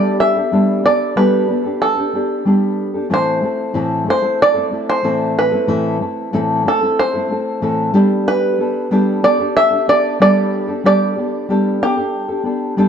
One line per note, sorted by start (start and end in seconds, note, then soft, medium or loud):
0.00 0.36 G3 medium
0.00 0.37 B3 medium
0.00 0.37 D4 medium
0.00 0.36 G4 medium
0.00 0.34 A4 medium
0.00 0.20 D5 loud
0.20 0.85 E5 loud
0.36 0.52 D4 soft
0.36 0.52 G4 medium
0.36 0.53 A4 medium
0.52 0.85 G3 medium
0.52 0.82 B3 medium
0.52 0.83 D4 medium
0.52 0.84 G4 medium
0.52 0.85 A4 medium
0.83 1.16 B3 medium
0.83 1.16 D4 medium
0.83 1.16 G4 medium
0.83 1.16 A4 medium
0.83 1.19 D5 loud
1.16 1.49 G3 medium
1.16 1.47 B3 medium
1.16 1.48 D4 loud
1.16 1.49 G4 medium
1.16 1.50 A4 loud
1.16 1.81 B4 medium
1.49 1.65 B3 medium
1.49 1.66 D4 medium
1.49 1.65 G4 medium
1.49 1.63 A4 medium
1.64 1.98 D4 medium
1.64 1.97 G4 medium
1.64 1.95 A4 medium
1.81 2.74 A4 medium
1.96 2.13 D4 medium
1.96 2.14 G4 medium
1.96 2.13 A4 medium
2.13 2.45 B3 medium
2.13 2.45 D4 medium
2.13 2.46 G4 medium
2.13 2.46 A4 medium
2.45 2.94 G3 medium
2.45 2.95 B3 medium
2.45 2.95 D4 medium
2.45 2.94 G4 medium
2.45 2.93 A4 medium
2.94 3.10 D4 soft
2.94 3.10 G4 soft
2.94 3.10 A4 medium
3.09 3.42 A2 medium
3.09 3.43 E3 medium
3.09 3.41 A3 medium
3.09 3.42 C4 medium
3.09 3.43 E4 medium
3.09 3.43 A4 medium
3.14 4.09 C5 loud
3.42 3.73 A3 medium
3.42 3.74 C4 medium
3.42 3.74 E4 medium
3.42 3.74 A4 medium
3.74 4.07 A2 medium
3.74 4.07 E3 medium
3.74 4.05 A3 medium
3.74 4.05 C4 medium
3.74 4.06 E4 medium
3.74 4.07 A4 medium
4.06 4.23 A3 medium
4.06 4.22 C4 medium
4.06 4.21 E4 medium
4.06 4.21 A4 medium
4.10 4.39 C5 loud
4.22 4.56 A3 soft
4.22 4.55 C4 medium
4.22 4.54 E4 medium
4.22 4.53 A4 medium
4.42 4.89 D5 loud
4.54 4.70 A3 medium
4.54 4.71 C4 medium
4.54 4.72 E4 medium
4.54 4.71 A4 medium
4.71 5.02 A3 medium
4.71 5.03 C4 medium
4.71 5.03 E4 medium
4.71 5.03 A4 medium
4.89 5.38 C5 loud
5.03 5.52 A2 medium
5.03 5.52 E3 medium
5.03 5.52 A3 medium
5.03 5.52 C4 medium
5.03 5.51 E4 medium
5.03 5.50 A4 medium
5.39 6.70 B4 medium
5.51 5.67 A3 soft
5.51 5.67 C4 soft
5.51 5.67 E4 medium
5.51 5.68 A4 medium
5.67 6.00 A2 medium
5.67 6.00 E3 medium
5.67 5.99 A3 medium
5.67 6.00 C4 medium
5.67 6.00 E4 loud
5.67 6.01 A4 medium
6.00 6.32 A3 medium
6.00 6.32 C4 medium
6.00 6.33 E4 medium
6.00 6.33 A4 medium
6.33 6.65 A2 loud
6.33 6.65 E3 medium
6.33 6.63 A3 loud
6.33 6.64 C4 medium
6.33 6.66 E4 loud
6.33 6.66 A4 loud
6.64 6.81 A3 medium
6.64 6.81 C4 medium
6.64 6.81 E4 medium
6.64 6.80 A4 medium
6.64 7.00 A4 loud
6.81 7.15 A3 medium
6.81 7.14 C4 medium
6.81 7.14 E4 medium
6.81 7.12 A4 medium
6.99 7.91 C5 loud
7.14 7.28 A3 soft
7.14 7.29 C4 medium
7.14 7.30 E4 medium
7.14 7.30 A4 medium
7.29 7.61 A3 medium
7.29 7.62 C4 medium
7.29 7.62 E4 medium
7.29 7.62 A4 medium
7.62 7.94 A2 medium
7.62 7.93 E3 medium
7.62 7.93 A3 medium
7.62 7.95 C4 medium
7.62 7.95 E4 medium
7.62 7.94 A4 medium
7.94 8.58 G3 medium
7.94 8.57 B3 medium
7.94 8.58 D4 medium
7.94 8.59 G4 loud
7.94 8.60 A4 medium
8.28 9.24 B4 loud
8.59 8.90 B3 medium
8.59 8.91 D4 medium
8.59 8.91 G4 medium
8.59 8.91 A4 medium
8.91 9.23 G3 medium
8.91 9.22 B3 medium
8.91 9.23 D4 loud
8.91 9.24 G4 loud
8.91 9.24 A4 loud
9.23 9.39 B3 medium
9.23 9.40 D4 medium
9.23 9.39 G4 medium
9.23 9.38 A4 medium
9.23 9.56 D5 loud
9.39 9.72 D4 soft
9.39 9.71 G4 medium
9.39 9.69 A4 medium
9.57 9.89 E5 loud
9.71 9.87 D4 medium
9.71 9.88 G4 medium
9.71 9.87 A4 medium
9.88 10.19 B3 medium
9.88 10.20 D4 medium
9.88 10.21 G4 medium
9.88 10.20 A4 medium
9.88 10.18 D5 loud
10.20 10.68 G3 medium
10.20 10.68 B3 medium
10.20 10.68 D4 medium
10.20 10.68 G4 medium
10.20 10.66 A4 loud
10.20 10.85 D5 loud
10.68 10.84 D4 medium
10.68 10.84 G4 medium
10.68 10.84 A4 medium
10.84 11.16 G3 medium
10.84 11.15 B3 medium
10.84 11.16 D4 medium
10.84 11.17 G4 loud
10.84 11.17 A4 medium
10.84 11.78 D5 loud
11.16 11.48 B3 medium
11.16 11.49 D4 medium
11.16 11.49 G4 medium
11.16 11.50 A4 medium
11.48 11.81 G3 medium
11.48 11.80 B3 medium
11.48 11.81 D4 medium
11.48 11.81 G4 loud
11.48 11.82 A4 loud
11.82 11.97 B3 medium
11.82 11.98 D4 medium
11.82 12.74 G4 medium
11.82 11.97 G4 medium
11.82 11.96 A4 medium
11.97 12.30 D4 soft
11.97 12.29 G4 medium
11.97 12.27 A4 medium
12.29 12.44 D4 soft
12.29 12.45 G4 medium
12.29 12.45 A4 medium
12.44 12.76 B3 medium
12.44 12.77 D4 medium
12.44 12.77 G4 medium
12.44 12.78 A4 medium
12.77 12.88 G3 medium
12.77 12.88 B3 loud
12.77 12.88 D4 loud
12.77 12.88 G4 loud
12.77 12.88 A4 loud